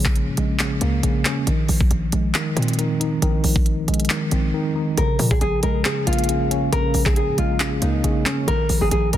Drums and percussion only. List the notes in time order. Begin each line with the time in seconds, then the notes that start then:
0.05 kick, clap
0.15 closed hi-hat
0.37 closed hi-hat
0.59 clap, closed hi-hat
0.81 closed hi-hat
1.03 closed hi-hat
1.25 clap, closed hi-hat
1.47 closed hi-hat
1.68 open hi-hat
1.81 kick
1.91 closed hi-hat
2.12 closed hi-hat
2.35 clap, closed hi-hat
2.57 closed hi-hat
2.62 closed hi-hat
2.68 closed hi-hat
2.73 closed hi-hat
2.79 closed hi-hat
3.01 closed hi-hat
3.22 closed hi-hat
3.44 open hi-hat
3.56 kick
3.66 closed hi-hat
3.88 closed hi-hat
3.94 closed hi-hat
4.00 closed hi-hat
4.05 closed hi-hat
4.10 clap, closed hi-hat
4.31 closed hi-hat
4.97 closed hi-hat
5.19 open hi-hat
5.31 kick
5.41 closed hi-hat
5.63 closed hi-hat
5.85 clap, closed hi-hat
6.07 closed hi-hat
6.13 closed hi-hat
6.19 closed hi-hat
6.24 closed hi-hat
6.29 closed hi-hat
6.51 closed hi-hat
6.73 closed hi-hat
6.94 open hi-hat
7.06 kick, clap
7.16 closed hi-hat
7.38 closed hi-hat
7.60 clap, closed hi-hat
7.82 closed hi-hat
8.04 closed hi-hat
8.26 clap, closed hi-hat
8.48 closed hi-hat
8.69 open hi-hat
8.91 closed hi-hat
9.13 closed hi-hat